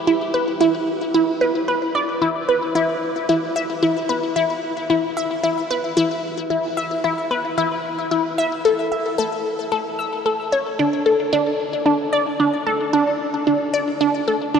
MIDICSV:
0, 0, Header, 1, 2, 480
1, 0, Start_track
1, 0, Tempo, 535714
1, 68, Time_signature, 4, 2, 24, 8
1, 13078, End_track
2, 0, Start_track
2, 0, Title_t, "Synth arpeggio sound"
2, 0, Program_c, 0, 84
2, 67, Note_on_c, 0, 64, 76
2, 247, Note_off_c, 0, 64, 0
2, 307, Note_on_c, 0, 71, 67
2, 487, Note_off_c, 0, 71, 0
2, 546, Note_on_c, 0, 64, 99
2, 775, Note_off_c, 0, 64, 0
2, 1028, Note_on_c, 0, 64, 82
2, 1207, Note_off_c, 0, 64, 0
2, 1266, Note_on_c, 0, 71, 71
2, 1375, Note_off_c, 0, 71, 0
2, 1507, Note_on_c, 0, 71, 77
2, 1736, Note_off_c, 0, 71, 0
2, 1747, Note_on_c, 0, 74, 80
2, 1927, Note_off_c, 0, 74, 0
2, 1986, Note_on_c, 0, 64, 77
2, 2166, Note_off_c, 0, 64, 0
2, 2227, Note_on_c, 0, 71, 74
2, 2407, Note_off_c, 0, 71, 0
2, 2466, Note_on_c, 0, 64, 100
2, 2695, Note_off_c, 0, 64, 0
2, 2948, Note_on_c, 0, 64, 86
2, 3127, Note_off_c, 0, 64, 0
2, 3189, Note_on_c, 0, 76, 94
2, 3368, Note_off_c, 0, 76, 0
2, 3429, Note_on_c, 0, 64, 72
2, 3608, Note_off_c, 0, 64, 0
2, 3667, Note_on_c, 0, 71, 79
2, 3847, Note_off_c, 0, 71, 0
2, 3907, Note_on_c, 0, 64, 100
2, 4135, Note_off_c, 0, 64, 0
2, 4388, Note_on_c, 0, 64, 76
2, 4567, Note_off_c, 0, 64, 0
2, 4629, Note_on_c, 0, 76, 103
2, 4808, Note_off_c, 0, 76, 0
2, 4867, Note_on_c, 0, 64, 84
2, 5047, Note_off_c, 0, 64, 0
2, 5111, Note_on_c, 0, 71, 70
2, 5289, Note_off_c, 0, 71, 0
2, 5347, Note_on_c, 0, 64, 94
2, 5576, Note_off_c, 0, 64, 0
2, 5827, Note_on_c, 0, 64, 77
2, 6007, Note_off_c, 0, 64, 0
2, 6067, Note_on_c, 0, 76, 92
2, 6247, Note_off_c, 0, 76, 0
2, 6309, Note_on_c, 0, 64, 78
2, 6488, Note_off_c, 0, 64, 0
2, 6548, Note_on_c, 0, 71, 78
2, 6727, Note_off_c, 0, 71, 0
2, 6789, Note_on_c, 0, 64, 104
2, 7016, Note_off_c, 0, 64, 0
2, 7268, Note_on_c, 0, 64, 76
2, 7447, Note_off_c, 0, 64, 0
2, 7509, Note_on_c, 0, 76, 97
2, 7688, Note_off_c, 0, 76, 0
2, 7749, Note_on_c, 0, 69, 78
2, 7928, Note_off_c, 0, 69, 0
2, 7988, Note_on_c, 0, 76, 74
2, 8167, Note_off_c, 0, 76, 0
2, 8227, Note_on_c, 0, 69, 103
2, 8456, Note_off_c, 0, 69, 0
2, 8707, Note_on_c, 0, 69, 85
2, 8887, Note_off_c, 0, 69, 0
2, 8948, Note_on_c, 0, 88, 96
2, 9127, Note_off_c, 0, 88, 0
2, 9189, Note_on_c, 0, 69, 71
2, 9416, Note_off_c, 0, 69, 0
2, 9427, Note_on_c, 0, 73, 76
2, 9655, Note_off_c, 0, 73, 0
2, 9667, Note_on_c, 0, 62, 77
2, 9847, Note_off_c, 0, 62, 0
2, 9906, Note_on_c, 0, 69, 72
2, 10086, Note_off_c, 0, 69, 0
2, 10147, Note_on_c, 0, 62, 97
2, 10376, Note_off_c, 0, 62, 0
2, 10625, Note_on_c, 0, 62, 81
2, 10806, Note_off_c, 0, 62, 0
2, 10867, Note_on_c, 0, 74, 98
2, 11047, Note_off_c, 0, 74, 0
2, 11109, Note_on_c, 0, 62, 76
2, 11288, Note_off_c, 0, 62, 0
2, 11349, Note_on_c, 0, 69, 79
2, 11528, Note_off_c, 0, 69, 0
2, 11587, Note_on_c, 0, 62, 95
2, 11816, Note_off_c, 0, 62, 0
2, 12070, Note_on_c, 0, 62, 74
2, 12249, Note_off_c, 0, 62, 0
2, 12308, Note_on_c, 0, 74, 101
2, 12487, Note_off_c, 0, 74, 0
2, 12550, Note_on_c, 0, 62, 91
2, 12728, Note_off_c, 0, 62, 0
2, 12791, Note_on_c, 0, 69, 74
2, 12969, Note_off_c, 0, 69, 0
2, 13031, Note_on_c, 0, 62, 102
2, 13078, Note_off_c, 0, 62, 0
2, 13078, End_track
0, 0, End_of_file